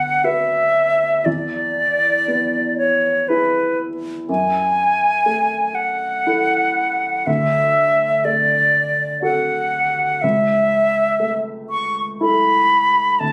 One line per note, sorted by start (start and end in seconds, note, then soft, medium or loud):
0.00 1.23 D2 soft
0.00 0.86 B3 soft
0.00 0.26 F#5 medium
0.24 1.22 F#4 soft
0.24 1.23 B4 soft
0.24 1.27 E5 medium
1.25 4.25 E2 soft
1.25 2.77 D5 medium
2.28 3.89 B3 soft
2.78 3.30 C#5 medium
3.28 4.25 E4 soft
3.28 4.25 G#4 soft
3.28 3.79 B4 soft
4.29 7.23 F#2 soft
4.29 5.76 G#5 medium
5.26 6.87 A3 soft
5.75 7.28 F#5 medium
6.27 7.23 E4 soft
6.27 7.24 A4 soft
7.27 10.19 D2 soft
7.27 8.26 E5 medium
8.25 9.83 A3 soft
8.25 9.22 D5 medium
9.22 10.18 F#4 soft
9.22 10.19 A4 soft
9.22 10.23 F#5 medium
10.22 13.18 C#2 soft
10.22 11.38 E5 medium
11.20 12.81 A3 soft
11.70 12.03 C#6 medium
12.21 13.18 E4 soft
12.21 13.18 A4 soft
12.21 13.21 B5 medium
13.20 13.32 D2 soft
13.20 13.32 A5 medium